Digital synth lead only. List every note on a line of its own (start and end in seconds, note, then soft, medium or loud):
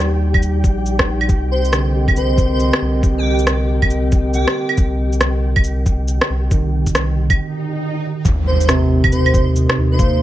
1.51 1.74 C5 medium
2.17 2.52 C5 medium
2.52 2.75 C5 medium
3.18 3.40 G4 medium
4.34 4.77 G4 medium
8.47 8.70 C5 loud
9.12 9.47 C5 loud
9.92 10.20 C5 medium